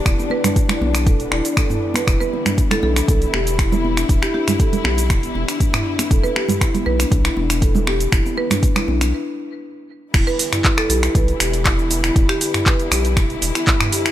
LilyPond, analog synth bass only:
\new Staff \with { instrumentName = "Analog synth bass" } { \clef bass \time 4/4 \key e \minor \tempo 4 = 119 e,,8 r4 b,,8 e,,8 e,,8 r4 | e,,8 r4 b,,8 b,,8 e,,4. | e,,8 r4 b,,8 e,,8 e,,8 r4 | e,,8 r4 b,,8 b,,8 e,,4. |
e,,8 r4 b,,8 r2 | e,,8 r4 b,,8 b,,8 e,,4. | e,,8 r4 b,,8 e,,8 e,,8 r4 | }